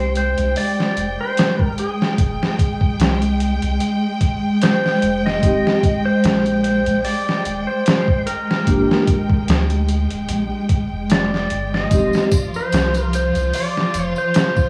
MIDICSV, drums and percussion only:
0, 0, Header, 1, 2, 480
1, 0, Start_track
1, 0, Tempo, 810811
1, 1292, Time_signature, 4, 2, 24, 8
1, 8698, End_track
2, 0, Start_track
2, 0, Title_t, "Drums"
2, 91, Note_on_c, 9, 42, 67
2, 151, Note_off_c, 9, 42, 0
2, 223, Note_on_c, 9, 42, 45
2, 282, Note_off_c, 9, 42, 0
2, 332, Note_on_c, 9, 46, 75
2, 391, Note_off_c, 9, 46, 0
2, 474, Note_on_c, 9, 38, 47
2, 534, Note_off_c, 9, 38, 0
2, 574, Note_on_c, 9, 42, 64
2, 633, Note_off_c, 9, 42, 0
2, 813, Note_on_c, 9, 42, 81
2, 824, Note_on_c, 9, 38, 108
2, 872, Note_off_c, 9, 42, 0
2, 883, Note_off_c, 9, 38, 0
2, 943, Note_on_c, 9, 36, 88
2, 1002, Note_off_c, 9, 36, 0
2, 1053, Note_on_c, 9, 42, 63
2, 1112, Note_off_c, 9, 42, 0
2, 1195, Note_on_c, 9, 38, 53
2, 1254, Note_off_c, 9, 38, 0
2, 1292, Note_on_c, 9, 36, 108
2, 1292, Note_on_c, 9, 42, 88
2, 1351, Note_off_c, 9, 36, 0
2, 1351, Note_off_c, 9, 42, 0
2, 1437, Note_on_c, 9, 38, 49
2, 1496, Note_off_c, 9, 38, 0
2, 1533, Note_on_c, 9, 36, 94
2, 1535, Note_on_c, 9, 42, 65
2, 1592, Note_off_c, 9, 36, 0
2, 1594, Note_off_c, 9, 42, 0
2, 1663, Note_on_c, 9, 36, 89
2, 1723, Note_off_c, 9, 36, 0
2, 1774, Note_on_c, 9, 42, 88
2, 1785, Note_on_c, 9, 38, 116
2, 1833, Note_off_c, 9, 42, 0
2, 1844, Note_off_c, 9, 38, 0
2, 1905, Note_on_c, 9, 42, 43
2, 1964, Note_off_c, 9, 42, 0
2, 2015, Note_on_c, 9, 42, 63
2, 2074, Note_off_c, 9, 42, 0
2, 2144, Note_on_c, 9, 42, 44
2, 2203, Note_off_c, 9, 42, 0
2, 2252, Note_on_c, 9, 42, 81
2, 2311, Note_off_c, 9, 42, 0
2, 2491, Note_on_c, 9, 42, 68
2, 2492, Note_on_c, 9, 36, 93
2, 2550, Note_off_c, 9, 42, 0
2, 2551, Note_off_c, 9, 36, 0
2, 2733, Note_on_c, 9, 42, 80
2, 2743, Note_on_c, 9, 38, 112
2, 2792, Note_off_c, 9, 42, 0
2, 2803, Note_off_c, 9, 38, 0
2, 2876, Note_on_c, 9, 38, 37
2, 2935, Note_off_c, 9, 38, 0
2, 2973, Note_on_c, 9, 42, 59
2, 3033, Note_off_c, 9, 42, 0
2, 3117, Note_on_c, 9, 38, 35
2, 3176, Note_off_c, 9, 38, 0
2, 3213, Note_on_c, 9, 36, 106
2, 3214, Note_on_c, 9, 42, 87
2, 3272, Note_off_c, 9, 36, 0
2, 3273, Note_off_c, 9, 42, 0
2, 3356, Note_on_c, 9, 38, 47
2, 3415, Note_off_c, 9, 38, 0
2, 3452, Note_on_c, 9, 36, 93
2, 3454, Note_on_c, 9, 42, 68
2, 3512, Note_off_c, 9, 36, 0
2, 3514, Note_off_c, 9, 42, 0
2, 3693, Note_on_c, 9, 42, 90
2, 3703, Note_on_c, 9, 38, 115
2, 3752, Note_off_c, 9, 42, 0
2, 3763, Note_off_c, 9, 38, 0
2, 3824, Note_on_c, 9, 42, 45
2, 3883, Note_off_c, 9, 42, 0
2, 3932, Note_on_c, 9, 42, 66
2, 3992, Note_off_c, 9, 42, 0
2, 4063, Note_on_c, 9, 42, 45
2, 4122, Note_off_c, 9, 42, 0
2, 4171, Note_on_c, 9, 46, 78
2, 4230, Note_off_c, 9, 46, 0
2, 4314, Note_on_c, 9, 38, 46
2, 4374, Note_off_c, 9, 38, 0
2, 4412, Note_on_c, 9, 42, 73
2, 4472, Note_off_c, 9, 42, 0
2, 4653, Note_on_c, 9, 42, 82
2, 4664, Note_on_c, 9, 38, 116
2, 4712, Note_off_c, 9, 42, 0
2, 4723, Note_off_c, 9, 38, 0
2, 4783, Note_on_c, 9, 36, 96
2, 4842, Note_off_c, 9, 36, 0
2, 4895, Note_on_c, 9, 42, 66
2, 4954, Note_off_c, 9, 42, 0
2, 5037, Note_on_c, 9, 38, 51
2, 5096, Note_off_c, 9, 38, 0
2, 5132, Note_on_c, 9, 36, 105
2, 5132, Note_on_c, 9, 42, 88
2, 5191, Note_off_c, 9, 36, 0
2, 5191, Note_off_c, 9, 42, 0
2, 5276, Note_on_c, 9, 38, 53
2, 5335, Note_off_c, 9, 38, 0
2, 5372, Note_on_c, 9, 36, 92
2, 5372, Note_on_c, 9, 42, 69
2, 5431, Note_off_c, 9, 36, 0
2, 5431, Note_off_c, 9, 42, 0
2, 5503, Note_on_c, 9, 36, 93
2, 5562, Note_off_c, 9, 36, 0
2, 5613, Note_on_c, 9, 42, 87
2, 5624, Note_on_c, 9, 38, 117
2, 5672, Note_off_c, 9, 42, 0
2, 5683, Note_off_c, 9, 38, 0
2, 5743, Note_on_c, 9, 42, 42
2, 5802, Note_off_c, 9, 42, 0
2, 5852, Note_on_c, 9, 42, 68
2, 5912, Note_off_c, 9, 42, 0
2, 5983, Note_on_c, 9, 42, 45
2, 6042, Note_off_c, 9, 42, 0
2, 6089, Note_on_c, 9, 42, 83
2, 6149, Note_off_c, 9, 42, 0
2, 6330, Note_on_c, 9, 42, 63
2, 6331, Note_on_c, 9, 36, 98
2, 6389, Note_off_c, 9, 42, 0
2, 6390, Note_off_c, 9, 36, 0
2, 6569, Note_on_c, 9, 42, 84
2, 6580, Note_on_c, 9, 38, 106
2, 6629, Note_off_c, 9, 42, 0
2, 6639, Note_off_c, 9, 38, 0
2, 6714, Note_on_c, 9, 38, 36
2, 6773, Note_off_c, 9, 38, 0
2, 6809, Note_on_c, 9, 42, 62
2, 6869, Note_off_c, 9, 42, 0
2, 6951, Note_on_c, 9, 38, 36
2, 7011, Note_off_c, 9, 38, 0
2, 7050, Note_on_c, 9, 42, 87
2, 7050, Note_on_c, 9, 54, 53
2, 7051, Note_on_c, 9, 36, 115
2, 7109, Note_off_c, 9, 42, 0
2, 7109, Note_off_c, 9, 54, 0
2, 7110, Note_off_c, 9, 36, 0
2, 7182, Note_on_c, 9, 54, 37
2, 7193, Note_on_c, 9, 38, 51
2, 7241, Note_off_c, 9, 54, 0
2, 7252, Note_off_c, 9, 38, 0
2, 7290, Note_on_c, 9, 54, 103
2, 7291, Note_on_c, 9, 42, 66
2, 7292, Note_on_c, 9, 36, 97
2, 7349, Note_off_c, 9, 54, 0
2, 7351, Note_off_c, 9, 36, 0
2, 7351, Note_off_c, 9, 42, 0
2, 7424, Note_on_c, 9, 54, 37
2, 7483, Note_off_c, 9, 54, 0
2, 7531, Note_on_c, 9, 54, 53
2, 7533, Note_on_c, 9, 42, 90
2, 7544, Note_on_c, 9, 38, 119
2, 7591, Note_off_c, 9, 54, 0
2, 7592, Note_off_c, 9, 42, 0
2, 7603, Note_off_c, 9, 38, 0
2, 7662, Note_on_c, 9, 54, 39
2, 7663, Note_on_c, 9, 42, 43
2, 7721, Note_off_c, 9, 54, 0
2, 7723, Note_off_c, 9, 42, 0
2, 7774, Note_on_c, 9, 42, 67
2, 7776, Note_on_c, 9, 54, 78
2, 7833, Note_off_c, 9, 42, 0
2, 7835, Note_off_c, 9, 54, 0
2, 7904, Note_on_c, 9, 42, 45
2, 7908, Note_on_c, 9, 54, 36
2, 7963, Note_off_c, 9, 42, 0
2, 7967, Note_off_c, 9, 54, 0
2, 8012, Note_on_c, 9, 54, 51
2, 8013, Note_on_c, 9, 46, 76
2, 8072, Note_off_c, 9, 46, 0
2, 8072, Note_off_c, 9, 54, 0
2, 8155, Note_on_c, 9, 38, 45
2, 8214, Note_off_c, 9, 38, 0
2, 8253, Note_on_c, 9, 42, 71
2, 8253, Note_on_c, 9, 54, 76
2, 8312, Note_off_c, 9, 42, 0
2, 8312, Note_off_c, 9, 54, 0
2, 8382, Note_on_c, 9, 54, 36
2, 8441, Note_off_c, 9, 54, 0
2, 8490, Note_on_c, 9, 54, 52
2, 8491, Note_on_c, 9, 42, 79
2, 8501, Note_on_c, 9, 38, 111
2, 8549, Note_off_c, 9, 54, 0
2, 8550, Note_off_c, 9, 42, 0
2, 8561, Note_off_c, 9, 38, 0
2, 8622, Note_on_c, 9, 54, 35
2, 8623, Note_on_c, 9, 36, 96
2, 8681, Note_off_c, 9, 54, 0
2, 8682, Note_off_c, 9, 36, 0
2, 8698, End_track
0, 0, End_of_file